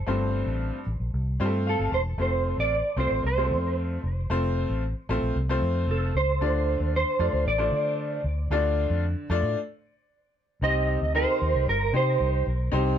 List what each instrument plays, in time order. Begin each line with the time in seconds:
0.06 fingered electric bass G1, upright piano G2 A3 C4 F4 C5
0.46 fingered electric bass A1
0.87 fingered electric bass A1
1.00 fingered electric bass A#1
1.14 fingered electric bass C2
1.40 fingered electric bass G2, upright piano G3 C4 F4 C5
1.45 upright piano A3
1.67 clean electric guitar A4, upright piano F5
1.79 fingered electric bass G1
1.92 fingered electric bass E1, clean electric guitar C5, upright piano A5
2.17 fingered electric bass F1, upright piano A3 C4 F4 C5
2.22 clean electric guitar C5
2.58 fingered electric bass A1, clean electric guitar D5
2.96 fingered electric bass C2, upright piano A3 C4 F4 C5, clean electric guitar C5
3.11 fingered electric bass A1
3.24 fingered electric bass C2, clean electric guitar C5
3.37 upright piano G#3 C4 F4 C5
3.43 upright piano A3
3.51 fingered electric bass F2
4.03 fingered electric bass F1
4.30 fingered electric bass F1, upright piano A3 C4 F4 C5
4.70 fingered electric bass A1
5.09 fingered electric bass A1, upright piano A3 C4 F4 C5
5.22 fingered electric bass A#1
5.36 fingered electric bass C2
5.49 upright piano A3 C4 F4 C5
5.62 fingered electric bass F2
5.87 fingered electric bass F1, clean electric guitar A4
6.15 fingered electric bass C#2, clean electric guitar C5
6.41 fingered electric bass D2, upright piano D3 A3 D4 F4 D5
6.80 fingered electric bass D#2
6.96 clean electric guitar C5
7.19 fingered electric bass F2, upright piano A3 D4 F4 D5
7.33 fingered electric bass D2
7.46 fingered electric bass A1, clean electric guitar D5
7.58 upright piano A3 D4 F4 C5
7.72 fingered electric bass D3
8.24 fingered electric bass D2
8.50 fingered electric bass D2, upright piano D3 A3 D4 F4 D5
8.90 fingered electric bass F2
9.30 fingered electric bass F2, upright piano A3 D4 F4 D5
9.43 fingered electric bass A2
10.61 fingered electric bass C2, upright piano C3 D#4 G4 C5, clean electric guitar D#5
11.02 fingered electric bass D2
11.15 upright piano D#4 G4 A4, clean electric guitar C5
11.22 upright piano A#4
11.42 fingered electric bass D#2
11.55 fingered electric bass C2
11.68 fingered electric bass G1, clean electric guitar A#4
11.93 fingered electric bass C3, upright piano D#4 G4 C5, clean electric guitar C5
12.20 fingered electric bass C2
12.47 fingered electric bass B1
12.72 fingered electric bass C2, upright piano C3 D#4 G4 C5